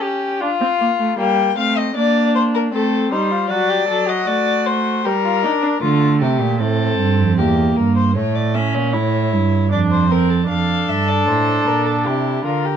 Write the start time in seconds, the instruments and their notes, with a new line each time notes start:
Already playing: viola C#4
0.01 violin G4
0.40 viola D4, violin F4
0.61 viola C4
0.80 viola A#3
0.99 viola A3
1.18 viola G3, violin A#3 G5
1.57 viola A3, violin C4 F5
1.77 violin D#5
1.95 viola A#3, violin D4 D5
2.35 violin C5
2.54 violin A#4
2.73 viola A3, violin C4 A4
3.12 viola G3, violin D#4 C5
3.31 violin F4
3.50 viola F#3, violin F#4 D5
3.69 violin G4
3.88 viola F#3, violin A4
4.07 violin F#4 D#5
4.27 viola A3, violin D5
4.66 violin C5
5.04 viola G3, violin G4 A#4
5.24 violin F4
5.43 viola D4, violin D#4
5.62 violin D4
5.82 cello D3, viola A3, violin F4
6.21 cello C3, violin G4
6.40 cello A#2
6.59 cello A2, viola C4, violin A4
6.99 cello G2
7.19 cello F2
7.38 cello E2, viola A#3, violin G4
7.76 cello G2, violin A#4
7.97 violin C5
8.16 cello A2, viola A3, violin C#5
8.35 violin D5
8.55 viola C#4, violin E5
8.74 cello A#2, violin C#5
8.94 cello A2, viola E4
9.33 cello G2
9.72 cello F2, viola D4, violin D5
9.91 violin C5
10.10 viola C4, violin A#4
10.30 violin A4
10.49 cello F2, viola D4, violin A4 F5
10.89 cello G2, violin E5
11.08 violin D5
11.28 cello A2, violin C5
11.67 cello A#2, violin A#4
11.87 violin A4
12.06 cello C3, violin E4 G4
12.45 cello D3, violin F4 A#4
12.65 violin G4